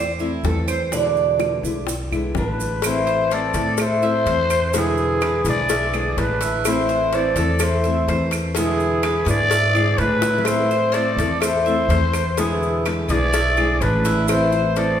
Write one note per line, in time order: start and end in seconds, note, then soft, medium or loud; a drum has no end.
0.00 0.40 E2 medium
0.00 0.19 C5 medium
0.19 0.44 A3 medium
0.19 0.44 C4 medium
0.19 0.43 E4 medium
0.19 maracas soft
0.43 1.57 E2 medium
0.43 0.91 E3 medium
0.43 0.92 A3 medium
0.43 0.92 C4 medium
0.43 0.92 E4 medium
0.43 0.67 A4 medium
0.43 high bongo medium
0.43 low bongo medium
0.43 maracas soft
0.68 0.91 C5 medium
0.68 claves medium
0.68 maracas medium
0.92 1.63 B2 medium
0.92 1.63 D3 medium
0.92 1.63 G#3 medium
0.92 1.63 B3 medium
0.92 1.63 E4 medium
0.92 1.84 D5 medium
0.92 high bongo medium
0.92 maracas medium
1.16 maracas soft
1.40 high bongo medium
1.40 claves medium
1.40 maracas soft
1.63 2.08 B1 medium
1.63 1.86 D3 soft
1.63 1.87 G#3 soft
1.63 1.87 B3 medium
1.63 1.87 E4 medium
1.63 high bongo soft
1.63 maracas medium
1.87 muted nylon-string guitar stroke medium
1.87 high bongo medium
1.87 maracas medium
2.11 2.34 B1 medium
2.11 2.35 D3 medium
2.11 2.35 G#3 medium
2.11 2.35 B3 medium
2.11 2.35 E4 medium
2.11 high bongo soft
2.11 claves medium
2.11 maracas soft
2.35 3.49 A1 loud
2.35 2.83 D3 medium
2.35 2.83 G#3 medium
2.35 2.83 B3 medium
2.35 2.81 D4 medium
2.35 2.84 E4 medium
2.35 2.87 B4 medium
2.35 high bongo medium
2.35 low bongo medium
2.35 maracas soft
2.59 high bongo soft
2.59 maracas medium
2.82 3.31 E3 medium
2.82 3.31 A3 medium
2.82 3.31 C4 medium
2.82 3.32 E4 medium
2.82 3.31 E4 medium
2.82 3.35 C5 loud
2.82 cowbell loud
2.82 claves medium
2.82 maracas loud
3.07 3.53 C5 medium
3.07 maracas soft
3.31 3.54 E3 medium
3.31 3.55 A3 soft
3.31 3.54 C4 medium
3.31 3.54 E4 medium
3.31 3.80 A4 medium
3.31 3.80 D5 loud
3.31 cowbell medium
3.31 maracas soft
3.54 4.22 A2 medium
3.54 3.78 A3 medium
3.54 3.78 C4 medium
3.54 3.78 E4 medium
3.54 4.01 A4 medium
3.54 cowbell medium
3.54 maracas medium
3.78 4.72 E4 medium
3.78 4.79 C5 loud
3.78 muted nylon-string guitar stroke medium
3.78 cowbell loud
3.78 claves medium
3.78 maracas medium
4.02 4.26 A3 medium
4.02 4.26 C4 medium
4.02 4.25 E4 medium
4.02 4.26 E5 medium
4.02 maracas soft
4.26 5.39 E2 loud
4.26 4.74 A3 medium
4.26 4.74 C4 medium
4.26 4.74 E4 medium
4.26 4.73 C5 medium
4.26 cowbell medium
4.26 maracas soft
4.50 cowbell medium
4.50 claves medium
4.50 maracas medium
4.74 5.21 B2 medium
4.74 5.21 D3 medium
4.74 5.21 G#3 medium
4.74 5.22 B3 medium
4.74 5.46 B3 medium
4.74 5.21 E4 medium
4.74 5.22 E4 medium
4.74 cowbell loud
4.74 maracas loud
4.78 5.48 G#4 loud
4.98 maracas soft
5.21 5.45 D3 medium
5.21 5.44 G#3 medium
5.21 5.43 B3 medium
5.21 5.43 E4 medium
5.21 5.68 B4 medium
5.21 cowbell medium
5.21 claves medium
5.21 maracas soft
5.44 6.13 B1 loud
5.44 5.68 D3 medium
5.44 5.68 G#3 medium
5.44 5.68 B3 medium
5.44 5.68 E4 medium
5.44 6.15 G#4 loud
5.44 cowbell medium
5.44 maracas medium
5.49 6.19 D5 loud
5.69 5.93 E5 medium
5.69 muted nylon-string guitar stroke medium
5.69 cowbell loud
5.69 maracas loud
5.93 6.16 D3 medium
5.93 6.16 G#3 medium
5.93 6.17 B3 medium
5.93 6.16 E4 medium
5.93 6.40 G#4 medium
5.93 claves medium
5.93 maracas soft
6.17 7.30 A1 medium
6.17 6.64 D3 medium
6.17 6.64 G#3 medium
6.17 6.65 B3 medium
6.17 6.66 D4 medium
6.17 6.65 E4 medium
6.17 6.66 B4 loud
6.17 cowbell medium
6.17 maracas soft
6.41 6.88 E4 loud
6.41 cowbell medium
6.41 maracas medium
6.65 7.12 E3 medium
6.65 7.12 A3 medium
6.65 7.13 C4 medium
6.65 7.10 E4 medium
6.65 7.13 E4 medium
6.65 7.16 C5 loud
6.65 cowbell loud
6.65 claves medium
6.65 maracas loud
6.89 7.35 C5 medium
6.89 maracas soft
7.13 7.36 E3 medium
7.13 7.37 A3 medium
7.13 7.37 C4 medium
7.13 7.35 E4 medium
7.13 7.61 A4 medium
7.13 7.65 D5 loud
7.13 cowbell medium
7.13 maracas soft
7.36 8.04 E2 loud
7.36 7.60 A3 medium
7.36 7.60 C4 medium
7.36 7.60 E4 medium
7.36 7.83 A4 medium
7.36 cowbell medium
7.36 maracas medium
7.59 8.29 E4 medium
7.59 8.31 C5 loud
7.59 muted nylon-string guitar stroke medium
7.59 cowbell loud
7.59 claves medium
7.59 maracas medium
7.84 8.08 A3 medium
7.84 8.08 C4 medium
7.84 8.08 E4 medium
7.84 8.07 E5 medium
7.84 maracas soft
8.08 9.21 E2 medium
8.08 8.55 E3 medium
8.08 8.56 A3 medium
8.08 8.56 C4 medium
8.08 8.56 E4 medium
8.08 8.55 C5 medium
8.08 cowbell medium
8.08 maracas soft
8.31 cowbell medium
8.31 claves medium
8.31 maracas medium
8.55 9.03 B2 medium
8.55 9.02 D3 medium
8.55 9.03 G#3 medium
8.55 9.23 B3 medium
8.55 9.03 B3 medium
8.55 9.02 E4 medium
8.55 9.03 E4 medium
8.55 9.24 G#4 loud
8.55 cowbell medium
8.55 maracas loud
8.80 maracas soft
9.03 9.26 D3 medium
9.03 9.27 G#3 soft
9.03 9.27 B3 medium
9.03 9.26 E4 medium
9.03 9.50 B4 medium
9.03 cowbell medium
9.03 claves medium
9.03 maracas soft
9.25 9.94 G#2 loud
9.25 9.49 D3 medium
9.25 9.50 G#3 medium
9.25 9.50 B3 medium
9.25 9.50 E4 medium
9.25 9.96 G#4 medium
9.25 cowbell medium
9.25 maracas medium
9.29 10.00 D5 loud
9.50 9.75 E5 medium
9.50 muted nylon-string guitar stroke medium
9.50 cowbell loud
9.50 maracas medium
9.74 9.98 D3 medium
9.74 9.98 G#3 medium
9.74 9.98 B3 medium
9.74 9.98 E4 medium
9.74 10.22 G#4 medium
9.74 claves medium
9.74 maracas soft
9.96 11.12 A2 medium
9.96 10.46 D3 soft
9.96 10.46 D4 medium
9.96 10.47 B4 loud
9.96 cowbell medium
10.00 10.46 G#3 medium
10.00 10.47 B3 medium
10.00 10.47 E4 medium
10.00 maracas soft
10.22 10.69 E4 medium
10.22 cowbell medium
10.22 high bongo medium
10.22 maracas medium
10.38 low bongo medium
10.45 10.93 E3 medium
10.45 10.94 A3 medium
10.45 10.94 C4 medium
10.45 10.92 E4 medium
10.45 10.95 E4 medium
10.45 10.95 C5 loud
10.45 cowbell loud
10.45 claves medium
10.45 maracas loud
10.71 11.17 C5 medium
10.71 maracas soft
10.92 11.18 E3 soft
10.92 11.18 A3 medium
10.92 11.41 A4 medium
10.92 11.41 D5 loud
10.92 cowbell medium
10.92 maracas soft
10.96 11.18 C4 medium
10.96 11.18 E4 medium
11.17 11.85 E2 loud
11.17 11.42 C4 medium
11.17 11.42 E4 medium
11.17 11.65 A4 medium
11.17 cowbell medium
11.17 maracas medium
11.21 11.42 A3 medium
11.41 12.33 E4 medium
11.41 12.41 C5 loud
11.41 muted nylon-string guitar stroke medium
11.41 cowbell loud
11.41 claves medium
11.41 maracas medium
11.66 11.90 A3 medium
11.66 11.90 C4 medium
11.66 11.89 E4 medium
11.66 11.89 E5 medium
11.66 maracas soft
11.88 13.02 E2 loud
11.88 12.37 E3 medium
11.88 12.37 A3 medium
11.88 12.38 C4 medium
11.88 12.38 E4 medium
11.88 12.36 C5 medium
11.88 cowbell medium
11.88 maracas soft
12.13 cowbell medium
12.13 claves medium
12.13 maracas medium
12.37 12.85 B2 medium
12.37 12.84 D3 medium
12.37 12.85 G#3 medium
12.37 12.82 B3 medium
12.37 12.85 B3 medium
12.37 12.84 E4 medium
12.37 12.85 E4 medium
12.37 12.83 G#4 medium
12.37 cowbell medium
12.37 maracas loud
12.63 maracas soft
12.85 13.09 D3 medium
12.85 13.09 G#3 medium
12.85 13.09 B3 medium
12.85 13.09 E4 medium
12.85 13.32 B4 medium
12.85 cowbell medium
12.85 claves medium
12.85 maracas soft
13.09 13.77 B1 loud
13.09 13.34 G#3 medium
13.09 13.34 B3 medium
13.09 13.33 E4 medium
13.09 13.77 G#4 medium
13.09 13.83 D5 loud
13.09 cowbell medium
13.09 maracas medium
13.13 13.34 D3 medium
13.33 13.56 E5 medium
13.33 muted nylon-string guitar stroke medium
13.33 cowbell loud
13.33 maracas medium
13.57 13.81 D3 medium
13.57 13.81 G#3 medium
13.57 13.81 B3 medium
13.57 13.80 E4 medium
13.57 14.04 G#4 medium
13.57 claves medium
13.57 maracas soft
13.81 14.94 A1 loud
13.81 14.28 D3 medium
13.81 14.29 G#3 soft
13.81 14.29 B3 medium
13.81 14.28 D4 medium
13.81 14.29 E4 medium
13.81 14.29 B4 loud
13.81 cowbell medium
13.81 maracas soft
14.05 14.51 E4 loud
14.05 cowbell medium
14.05 maracas medium
14.28 14.74 E3 medium
14.28 14.75 A3 medium
14.28 14.75 C4 medium
14.28 14.73 E4 loud
14.28 14.76 E4 medium
14.28 14.73 C5 loud
14.28 cowbell medium
14.28 claves medium
14.28 maracas loud
14.52 14.99 C5 medium
14.52 maracas soft
14.75 14.99 E3 soft
14.75 14.99 A3 medium
14.75 14.99 C4 medium
14.75 14.99 E4 medium
14.75 15.00 A4 medium
14.75 15.00 D5 loud
14.75 cowbell medium
14.75 maracas soft